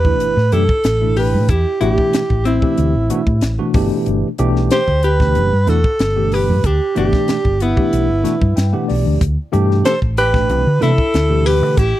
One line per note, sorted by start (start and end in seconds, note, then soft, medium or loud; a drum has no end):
0.00 0.20 E2 medium
0.00 0.52 G4 medium
0.00 0.54 B4 loud
0.05 0.34 B2 medium
0.05 0.34 E3 medium
0.05 0.34 A3 medium
0.05 0.34 D4 medium
0.05 0.34 E4 medium
0.05 kick medium
0.20 0.34 G1 medium
0.20 closed hi-hat medium
0.37 0.50 A2 medium
0.37 snare soft
0.52 0.67 F#2 medium
0.52 0.63 B2 medium
0.52 0.63 E3 medium
0.52 0.63 A3 medium
0.52 0.63 D4 medium
0.52 1.16 E4 medium
0.52 0.63 G4 loud
0.52 1.17 A4 medium
0.52 closed hi-hat medium
0.69 muted fingered electric bass stroke soft
0.69 kick medium
0.84 1.35 A1 medium
0.84 snare loud
0.84 closed hi-hat medium
1.01 1.50 B2 medium
1.01 1.50 E3 medium
1.01 1.50 A3 medium
1.01 1.50 D4 medium
1.01 1.50 E4 medium
1.16 1.49 G4 medium
1.16 1.51 B4 medium
1.16 open hi-hat medium
1.34 1.47 A2 medium
1.49 1.63 E2 medium
1.49 1.79 E4 medium
1.49 1.82 G4 medium
1.49 kick medium
1.49 closed hi-hat medium
1.80 1.96 A1 medium
1.80 2.21 B2 medium
1.80 2.21 E3 medium
1.80 2.21 A3 medium
1.80 2.21 D4 medium
1.80 2.41 E4 medium
1.80 2.21 G4 loud
1.80 2.42 G4 medium
1.80 closed hi-hat medium
1.98 kick medium
2.13 muted fingered electric bass stroke soft
2.13 snare loud
2.13 closed hi-hat medium
2.30 2.58 A1 medium
2.30 kick medium
2.45 3.70 C4 medium
2.45 2.54 D4 soft
2.45 3.71 E4 medium
2.45 2.54 G4 soft
2.45 closed hi-hat medium
2.62 2.92 B2 medium
2.62 2.92 E3 medium
2.62 2.92 A3 medium
2.62 2.92 D4 medium
2.62 2.92 G4 medium
2.62 kick medium
2.78 2.93 D2 medium
2.78 closed hi-hat medium
2.95 3.08 A1 medium
3.10 3.20 B2 medium
3.10 3.20 E3 medium
3.10 3.20 A3 medium
3.10 3.21 D4 medium
3.10 3.21 F#4 loud
3.10 closed hi-hat medium
3.26 3.40 A2 medium
3.26 3.34 D4 soft
3.26 3.35 G4 soft
3.26 kick medium
3.41 3.57 A1 medium
3.41 snare loud
3.41 closed hi-hat medium
3.58 3.73 B2 medium
3.58 3.74 E3 medium
3.58 3.74 A3 medium
3.58 3.74 D4 medium
3.58 3.75 F#4 medium
3.74 3.89 G1 medium
3.74 4.27 B2 medium
3.74 4.27 E3 medium
3.74 4.27 A3 medium
3.74 4.27 D4 medium
3.74 4.27 G4 loud
3.74 kick loud
3.74 open hi-hat medium
4.06 4.21 G1 medium
4.06 closed hi-hat medium
4.38 4.67 B1 loud
4.38 4.79 B2 loud
4.38 4.79 E3 loud
4.38 4.79 A3 medium
4.38 4.79 D4 loud
4.38 4.79 G4 loud
4.38 closed hi-hat medium
4.56 snare soft
4.71 5.02 G4 medium
4.71 5.06 C5 loud
4.71 snare loud
4.71 closed hi-hat medium
4.88 5.37 D2 medium
4.88 kick medium
5.03 5.12 D4 soft
5.03 5.12 G4 soft
5.03 5.70 G4 medium
5.03 5.70 B4 loud
5.03 closed hi-hat medium
5.20 5.49 B2 medium
5.20 5.49 E3 medium
5.20 5.50 A3 medium
5.20 5.50 D4 medium
5.20 5.50 G4 medium
5.20 kick medium
5.20 snare soft
5.35 5.50 F#1 medium
5.35 closed hi-hat medium
5.53 5.66 G2 medium
5.67 5.82 E2 medium
5.67 5.78 B2 medium
5.67 5.78 E3 medium
5.67 5.78 A3 medium
5.67 5.78 D4 medium
5.67 5.78 E4 medium
5.67 6.34 F#4 medium
5.67 6.35 A4 medium
5.67 closed hi-hat medium
5.84 muted fingered electric bass stroke soft
5.84 kick medium
5.99 6.51 G1 medium
5.99 snare loud
5.99 closed hi-hat medium
6.16 6.65 B2 medium
6.16 6.65 E3 medium
6.16 6.65 A3 medium
6.16 6.65 D4 medium
6.16 6.65 G4 medium
6.32 6.66 G4 medium
6.32 6.67 B4 medium
6.32 open hi-hat medium
6.50 6.63 G2 medium
6.64 6.78 D2 medium
6.64 6.96 D4 medium
6.64 6.97 G4 medium
6.64 kick medium
6.64 closed hi-hat medium
6.95 7.11 G1 medium
6.95 7.35 B2 medium
6.95 7.35 E3 medium
6.95 7.35 A3 medium
6.95 7.35 D4 medium
6.95 7.57 D4 medium
6.95 7.35 G4 loud
6.95 7.64 G4 medium
6.95 closed hi-hat medium
7.13 kick medium
7.13 snare soft
7.28 muted fingered electric bass stroke soft
7.28 snare loud
7.28 closed hi-hat medium
7.45 7.73 G1 medium
7.45 kick medium
7.60 8.90 B3 medium
7.60 7.69 D4 soft
7.60 8.90 E4 medium
7.60 7.69 G4 soft
7.60 closed hi-hat medium
7.76 8.06 B2 medium
7.76 8.06 E3 medium
7.76 8.06 A3 medium
7.76 8.06 D4 medium
7.76 8.06 G4 medium
7.76 kick medium
7.93 8.07 B1 medium
7.93 closed hi-hat medium
8.09 8.23 G1 medium
8.24 8.34 B2 medium
8.24 8.35 E3 medium
8.24 8.35 A3 medium
8.24 8.35 D4 medium
8.24 8.35 F#4 loud
8.24 snare soft
8.24 closed hi-hat medium
8.41 8.55 G2 medium
8.41 8.49 E4 soft
8.41 kick medium
8.56 8.71 G2 medium
8.56 8.72 G5 medium
8.56 snare medium
8.56 closed hi-hat medium
8.73 9.21 B2 medium
8.73 9.21 E3 medium
8.73 9.21 A3 medium
8.73 9.21 D4 medium
8.73 9.21 G4 medium
8.73 8.88 F#5 medium
8.88 9.05 B1 medium
8.88 9.19 D5 medium
8.88 open hi-hat medium
9.07 9.20 D2 medium
9.21 9.36 D2 medium
9.21 kick loud
9.21 closed hi-hat medium
9.52 9.81 G2 loud
9.52 9.92 B2 loud
9.52 9.92 E3 loud
9.52 9.92 A3 loud
9.52 9.92 D4 loud
9.52 9.92 G4 loud
9.52 closed hi-hat medium
9.71 snare soft
9.85 9.94 A4 medium
9.85 10.00 C5 loud
9.85 snare loud
9.85 closed hi-hat medium
10.02 10.50 A1 medium
10.02 kick medium
10.17 10.25 D4 soft
10.17 10.26 G4 soft
10.17 10.78 G4 medium
10.17 10.83 B4 loud
10.17 closed hi-hat medium
10.33 10.63 B2 medium
10.33 10.63 E3 medium
10.33 10.63 A3 medium
10.33 10.63 D4 medium
10.33 10.63 G4 medium
10.33 kick medium
10.33 snare soft
10.50 10.64 C2 medium
10.50 closed hi-hat medium
10.67 10.80 D3 medium
10.80 10.91 B2 medium
10.80 10.96 C3 medium
10.80 10.91 E3 medium
10.80 10.91 A3 medium
10.80 10.91 D4 medium
10.80 10.92 E4 medium
10.80 11.46 E4 medium
10.80 11.47 A4 loud
10.80 snare soft
10.80 closed hi-hat medium
10.97 11.05 D4 soft
10.97 11.05 A4 soft
10.97 muted fingered electric bass stroke soft
10.97 kick medium
11.14 11.63 D2 medium
11.14 snare loud
11.14 closed hi-hat medium
11.29 11.78 B2 medium
11.29 11.78 E3 medium
11.29 11.78 A3 medium
11.29 11.78 D4 medium
11.29 11.78 G4 medium
11.46 11.78 G4 medium
11.46 11.79 B4 medium
11.46 open hi-hat medium
11.63 11.76 D3 medium
11.77 11.92 A1 medium
11.77 12.00 E4 medium
11.77 12.00 G4 medium
11.77 kick loud
11.77 closed hi-hat medium